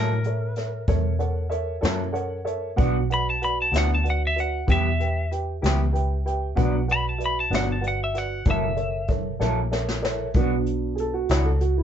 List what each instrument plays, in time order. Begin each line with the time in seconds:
Already playing: fingered electric bass A2, clean electric guitar F#3 A#3 E4 A4, upright piano A4 A#4 C#5 E5, lead electric guitar A#4
0.24 upright piano A4 A#4 C#5 E5, closed hi-hat
0.56 upright piano A4 A#4 C#5 E5, snare, closed hi-hat
0.88 fingered electric bass E2, upright piano A4 A#4 C#5 E5, kick, closed hi-hat
1.19 upright piano A4 A#4 C#5 F#5, closed hi-hat
1.50 upright piano A4 A#4 C#5 E5, closed hi-hat
1.81 fingered electric bass F#2, clean electric guitar F#3 A#3 E4 A4, upright piano A4 A#4 C#5 E5, closed hi-hat
1.85 snare
2.13 upright piano A4 A#4 C#5 F#5, closed hi-hat
2.45 upright piano A4 A#4 C#5 E5, closed hi-hat
2.76 fingered electric bass B1, clean electric guitar B2 B3 D4 F#4, upright piano F#4 B4 D5 F#5, kick, closed hi-hat
3.10 upright piano F#4 B4 D5 F#5, lead electric guitar B5, closed hi-hat
3.30 lead electric guitar A5
3.42 upright piano F#4 B4 D5 F#5, lead electric guitar B5, closed hi-hat
3.62 lead electric guitar A5
3.72 fingered electric bass D2, clean electric guitar B2 B3 D4 F#4, upright piano F#4 B4 D5 E5, snare, closed hi-hat
3.78 lead electric guitar F#5
3.95 lead electric guitar A5
4.04 upright piano F#4 B4 D5 F#5, closed hi-hat
4.10 lead electric guitar F#5
4.27 lead electric guitar E5
4.36 upright piano F#4 B4 D5 E5, closed hi-hat
4.40 lead electric guitar F#5
4.67 fingered electric bass E2, clean electric guitar E3 B3 E4 G4, upright piano G4 B4 E5 G5, kick, closed hi-hat
4.72 lead electric guitar E5
4.99 upright piano G4 B4 E5 G5, closed hi-hat
5.31 upright piano G4 B4 E5 G5, closed hi-hat
5.61 fingered electric bass C#2, clean electric guitar E3 B3 E4 G4, upright piano G4 B4 E5 G5, closed hi-hat
5.66 snare
5.92 upright piano G4 B4 E5 G5, closed hi-hat
6.25 upright piano G4 B4 E5 G5, closed hi-hat
6.56 fingered electric bass B1, clean electric guitar B2 F#3 B3 D4, upright piano F#4 B4 D5 F#5, kick, closed hi-hat
6.87 upright piano F#4 B4 D5 F#5, closed hi-hat
6.92 lead electric guitar B5
7.09 lead electric guitar A5
7.18 upright piano F#4 B4 D5 E5, closed hi-hat
7.26 lead electric guitar B5
7.40 lead electric guitar A5
7.50 fingered electric bass G1, clean electric guitar B2 F#3 B3 D4, upright piano F#4 B4 D5 F#5, closed hi-hat
7.54 lead electric guitar F#5, snare
7.72 lead electric guitar A5
7.81 upright piano F#4 B4 D5 F#5, closed hi-hat
7.88 lead electric guitar F#5
8.04 lead electric guitar E5
8.14 upright piano F#4 B4 D5 F#5, snare, closed hi-hat
8.18 lead electric guitar F#5
8.45 fingered electric bass F#1, clean electric guitar F#3 A#3 E4 A4, upright piano A4 A#4 C#5 E5, kick, closed hi-hat
8.51 lead electric guitar E5
8.76 upright piano A4 A#4 C#5 E5, closed hi-hat
9.08 upright piano A4 A#4 C#5 E5, kick, closed hi-hat
9.39 fingered electric bass A#1, clean electric guitar F#3 A#3 E4 A4, upright piano A4 A#4 C#5 E5, snare
9.71 upright piano A4 A#4 C#5 E5, snare
9.89 snare
10.02 upright piano A4 A#4 C#5 E5, snare
10.34 fingered electric bass B1, clean electric guitar B2 B3 D4 F#4, upright piano F#3 B3 D4, kick, closed hi-hat
10.66 closed hi-hat
10.96 upright piano G#4, closed hi-hat
11.00 upright piano A4
11.14 upright piano F#4
11.29 fingered electric bass C#2, clean electric guitar B2 B3 D4 F#4, upright piano E4, snare, closed hi-hat
11.45 upright piano A4
11.61 upright piano F#4, closed hi-hat
11.78 upright piano E4